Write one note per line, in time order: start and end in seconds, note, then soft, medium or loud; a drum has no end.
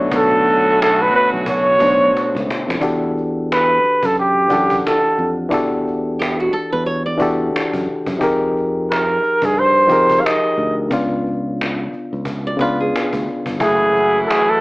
0.00 1.00 B2 medium
0.00 2.79 B2 medium
0.00 2.44 D3 medium
0.00 2.77 D3 medium
0.00 2.44 F#3 medium
0.00 1.01 A3 medium
0.00 2.78 A3 medium
0.00 2.79 B3 medium
0.00 2.44 C#4 medium
0.00 1.02 D4 medium
0.00 2.44 F#4 medium
0.00 1.06 C#5 loud
0.12 1.09 B1 loud
0.12 0.77 A4 medium
0.12 cajon bass loud
0.48 cajon slap soft
0.81 1.03 A4 medium
0.81 cajon slap loud
1.02 1.14 B4 medium
1.14 1.30 B4 medium
1.14 muted fingered electric bass stroke soft
1.14 cajon slap soft
1.34 1.77 B1 medium
1.34 cajon slap soft
1.46 2.45 C#5 loud
1.46 cajon bass loud
1.78 2.11 B1 medium
1.78 2.72 B2 medium
1.78 2.73 A3 medium
1.78 2.74 D4 medium
1.78 cajon bass medium
1.83 1.89 C5 medium
1.90 2.78 C#5 medium
2.13 muted fingered electric bass stroke soft
2.13 cajon slap soft
2.17 cajon slap medium
2.35 2.47 C#2 medium
2.35 cajon slap medium
2.50 cajon slap loud
2.68 2.81 F2 medium
2.68 cajon slap medium
2.79 3.79 E2 medium
2.79 4.04 E3 medium
2.79 4.04 D4 medium
2.79 4.05 F#4 medium
2.79 4.06 G4 medium
2.79 cajon bass loud
2.84 4.06 A4 medium
3.17 cajon slap soft
3.52 4.07 B4 loud
3.52 cajon slap medium
3.84 muted fingered electric bass stroke soft
3.84 cajon slap soft
4.03 4.46 F#2 medium
4.03 4.18 A4 medium
4.03 cajon bass medium
4.16 4.81 G4 medium
4.16 cajon slap soft
4.48 4.81 F#2 medium
4.48 5.41 E3 medium
4.48 5.42 D4 medium
4.48 5.43 G4 medium
4.48 5.43 F#5 medium
4.48 cajon bass medium
4.53 5.44 A4 medium
4.70 cajon bass medium
4.86 5.35 A4 medium
4.86 cajon slap loud
5.19 5.49 F2 medium
5.19 cajon slap soft
5.49 6.49 E2 loud
5.49 6.73 E3 medium
5.49 6.74 D4 medium
5.49 6.75 F#4 medium
5.49 6.75 G4 medium
5.49 cajon bass loud
5.54 6.76 A4 medium
5.88 cajon slap soft
6.19 6.38 G4 medium
6.19 cajon slap loud
6.40 6.52 F#4 medium
6.53 6.71 A4 medium
6.53 muted fingered electric bass stroke soft
6.53 cajon slap soft
6.72 7.16 E2 medium
6.72 6.85 B4 medium
6.85 7.05 C#5 medium
6.85 cajon slap soft
7.06 8.03 D5 medium
7.17 7.51 E2 medium
7.17 8.11 E3 medium
7.17 8.12 D4 medium
7.17 8.12 F#4 medium
7.17 8.13 G4 medium
7.17 cajon bass medium
7.22 8.14 A4 medium
7.54 muted fingered electric bass stroke soft
7.54 cajon slap loud
7.73 7.86 F#2 medium
7.73 cajon bass medium
7.88 cajon slap soft
8.06 8.20 F#2 medium
8.06 cajon bass medium
8.18 9.18 F2 loud
8.18 9.43 F3 medium
8.18 9.44 D#4 medium
8.18 9.44 G4 medium
8.18 9.45 G#4 medium
8.18 cajon bass loud
8.23 9.45 A#4 medium
8.57 cajon slap soft
8.91 9.46 A#4 medium
8.91 cajon slap loud
9.23 muted fingered electric bass stroke soft
9.23 cajon slap soft
9.42 9.92 G2 medium
9.42 9.60 G#4 medium
9.42 cajon bass medium
9.55 cajon slap soft
9.59 10.22 C5 loud
9.87 10.20 F2 medium
9.87 10.81 F3 medium
9.87 10.81 D#4 medium
9.87 10.82 G4 medium
9.87 cajon bass medium
9.91 10.83 G#4 medium
9.91 10.83 A#4 medium
10.10 cajon bass medium
10.20 10.28 F5 medium
10.26 10.78 D#5 medium
10.26 cajon slap loud
10.58 10.88 D2 medium
10.58 cajon slap soft
10.89 11.88 C#2 medium
10.89 12.13 C#3 medium
10.89 12.14 B3 medium
10.89 12.15 D4 medium
10.89 cajon bass loud
10.93 12.15 F4 medium
11.27 cajon slap soft
11.61 cajon slap loud
11.93 muted fingered electric bass stroke soft
11.93 cajon slap soft
12.13 12.56 C#2 medium
12.13 cajon slap soft
12.25 cajon bass loud
12.47 12.59 D5 medium
12.57 12.90 C#2 medium
12.57 13.51 C#3 medium
12.57 13.52 B3 medium
12.57 13.52 D4 medium
12.57 12.79 B4 medium
12.57 cajon bass medium
12.62 13.53 F4 medium
12.80 13.57 G#4 medium
12.94 muted fingered electric bass stroke soft
12.94 cajon slap loud
13.13 13.26 D2 medium
13.13 cajon bass medium
13.28 cajon slap soft
13.46 13.59 G1 medium
13.46 cajon bass medium
13.58 14.24 F#1 loud
13.58 14.61 C#3 medium
13.58 14.61 E3 medium
13.58 14.61 F#3 medium
13.58 14.61 A3 medium
13.58 14.61 E4 medium
13.58 14.61 F#5 medium
13.58 14.61 G#5 medium
13.58 cajon bass loud
13.63 14.61 A3 medium
13.63 14.21 G#4 loud
13.96 cajon slap soft
14.26 14.51 G#4 medium
14.26 14.31 A4 medium
14.30 cajon slap loud
14.49 14.61 A4 medium
14.49 muted fingered electric bass stroke medium